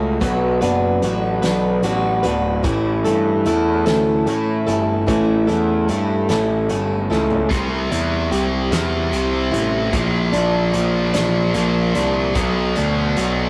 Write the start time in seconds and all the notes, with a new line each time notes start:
Already playing: C#2 A3 C#4 F#4
0.20 B1 B2 F#3 B3 D4 F#4 B4, kick, closed hi-hat
0.61 F#1 B3 D4 F#4 B4, closed hi-hat
1.02 A1 B3 D4 F#4 B4, closed hi-hat
1.42 B1 B3 D4 F#4 B4, snare, closed hi-hat
1.82 A1 B3 D4 F#4 B4, closed hi-hat
2.23 D1 B3 D4 F#4 B4, closed hi-hat
2.63 A1 A2 E3 A3 C#4 E4 A4, kick, closed hi-hat
3.04 G2 A3 C#4 E4 A4, closed hi-hat
3.45 E2 A3 C#4 E4 A4, closed hi-hat
3.86 D2 A3 C#4 E4 A4, snare, closed hi-hat
4.26 A2 A3 C#4 E4 A4, closed hi-hat
4.67 G1 A3 C#4 E4 A4, closed hi-hat
5.07 A1 A2 E3 A3 C#4 E4 A4, kick, closed hi-hat
5.47 E2 A3 C#4 E4 A4, closed hi-hat
5.88 G2 A3 C#4 E4 A4, closed hi-hat
6.29 A1 A3 C#4 E4 A4, snare, closed hi-hat
6.69 G1 A3 C#4 E4 A4, closed hi-hat
7.10 C#2 A3 C#4 E4 A4, snare
7.30 floor tom
7.49 C2 C3 G3 C4, kick, closed hi-hat
7.91 E2 E4, closed hi-hat
8.31 C2 G4, closed hi-hat
8.71 E2 E4, snare, closed hi-hat
9.12 C2 C3 G3 C4, closed hi-hat
9.52 A1 E4, closed hi-hat
9.92 A#1 A#2 F3 A#3, kick, closed hi-hat
10.33 A#1 D4, closed hi-hat
10.73 A#1 F4, closed hi-hat
11.14 A#1 D4, snare, closed hi-hat
11.54 A#1 A#2 F3 A#3, closed hi-hat
11.95 C2 D4, closed hi-hat
12.35 B1 B2 F#3 B3, kick, closed hi-hat
12.76 D2 D4, closed hi-hat
13.17 B1 F#4, closed hi-hat